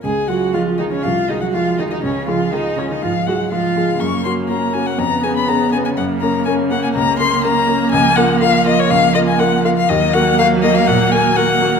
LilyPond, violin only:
\new Staff \with { instrumentName = "Violin" } { \time 4/4 \key des \major \tempo 4 = 122 aes''8 ges''8 f''8 ees''16 des''16 f''8 ees''16 ges''16 f''8 ees''16 ees''16 | des''8 f''8 ees''8 des''16 ees''16 f''8 ges''8 f''4 | des'''8 c'''8 bes''8 aes''16 ges''16 bes''8 aes''16 ces'''16 bes''8 aes''16 aes''16 | ges''8 bes''8 aes''8 ges''16 aes''16 bes''8 c'''8 bes''4 |
\key bes \minor aes''8 ges''8 f''8 ees''16 des''16 f''8 ees''16 aes''16 ges''8 f''16 f''16 | ees''8 ges''8 f''8 ees''16 f''16 ges''8 aes''8 ges''4 | }